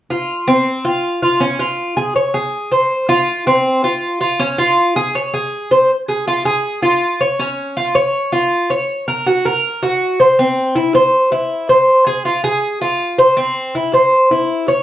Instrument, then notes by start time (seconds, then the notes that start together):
cuban tres
0.10 F4
0.48 C4
0.85 F4
1.22 F4
1.40 C#4
1.59 F4
1.97 G#4
2.16 C#5
2.34 G#4
2.72 C5
3.09 F4
3.47 C4
3.84 F4
4.21 F4
4.39 C#4
4.58 F4
4.96 G#4
5.15 C#5
5.34 G#4
5.71 C5
6.08 G#4
6.27 F4
6.45 G#4
6.82 F4
7.21 C#5
7.39 C#4
7.77 F4
7.95 C#5
8.32 F4
8.70 C#5
9.08 A#4
9.26 F#4
9.45 A#4
9.83 F#4
10.20 C5
10.39 C4
10.75 E4
10.95 C5
11.32 E4
11.69 C5
12.07 G#4
12.25 F4
12.44 G#4
12.81 F4
13.18 C5
13.37 C4
13.75 E4
13.93 C5
14.31 E4
14.68 C#5